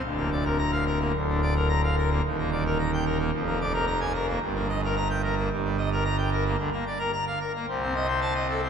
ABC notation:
X:1
M:4/4
L:1/16
Q:1/4=110
K:Bb
V:1 name="Pipe organ"
D,, B, d B b f B B, D,, D, d B b f B B, | E,, B, d B b g B B, F,, B, d B b _a B B, | G,, B, e B b g B B, G,, G, e B b g B B, | D, B, d B b f B B, C, C e c a e A C |]
V:2 name="Pipe organ" clef=bass
D,,,8 D,,,8 | E,,,8 F,,,8 | G,,,8 G,,,8 | D,, z6 z C,,8 |]